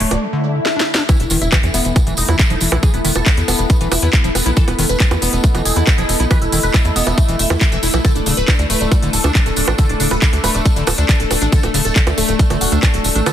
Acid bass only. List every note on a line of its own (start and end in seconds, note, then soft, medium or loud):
0.00 0.23 A3 medium
0.22 0.27 F#3 medium
0.33 0.56 D3 medium
0.55 0.60 C#3 medium
0.76 0.81 D4 medium
0.98 1.03 D4 medium
1.09 1.17 E3 medium
1.31 1.38 D#3 medium
1.52 1.58 E3 medium
1.74 1.97 B3 medium
1.96 2.01 G#3 medium
2.07 2.14 E3 medium
2.29 2.36 E4 medium
2.50 2.55 F3 medium
2.72 2.77 E4 loud
2.83 2.91 E3 medium
3.05 3.12 D#3 medium
3.26 3.31 E3 medium
3.48 3.71 B3 medium
3.70 3.75 G#3 medium
3.81 3.88 E3 medium
4.02 4.10 E4 medium
4.24 4.29 F3 loud
4.46 4.51 E4 loud
4.57 4.64 E3 medium
4.79 4.86 D#3 medium
5.00 5.05 E3 medium
5.22 5.45 B3 medium
5.44 5.49 G#3 medium
5.55 5.62 E3 medium
5.76 5.84 E4 medium
5.98 6.03 F3 loud
6.20 6.25 E4 loud
6.31 6.38 E3 medium
6.52 6.60 D#3 medium
6.74 6.79 E3 medium
6.96 7.19 B3 medium
7.18 7.23 G#3 medium
7.29 7.36 E3 medium
7.50 7.55 D#3 medium
7.61 7.66 E3 medium
7.72 7.77 E3 medium
7.83 7.88 E4 medium
7.94 7.97 F3 medium
8.05 8.12 D3 medium
8.26 8.34 C#3 medium
8.48 8.53 D3 medium
8.70 8.93 A3 medium
8.92 8.97 F#3 medium
9.02 9.10 D3 medium
9.24 9.32 D4 medium
9.35 9.40 E3 loud
9.68 9.73 D4 loud
9.79 9.86 D3 medium
10.00 10.08 C#3 medium
10.22 10.27 D3 medium
10.44 10.67 A3 medium
10.65 10.71 F#3 medium
10.76 10.84 D3 medium
10.98 11.06 D4 medium
11.09 11.14 E3 loud
11.42 11.47 D4 loud
11.52 11.60 D3 medium
11.74 11.82 C#3 medium
11.96 12.01 D3 medium
12.18 12.41 A3 medium
12.39 12.45 F#3 medium
12.50 12.58 D3 medium
12.72 12.80 D4 medium
12.83 12.88 E3 loud
13.15 13.21 D4 loud
13.26 13.33 D3 medium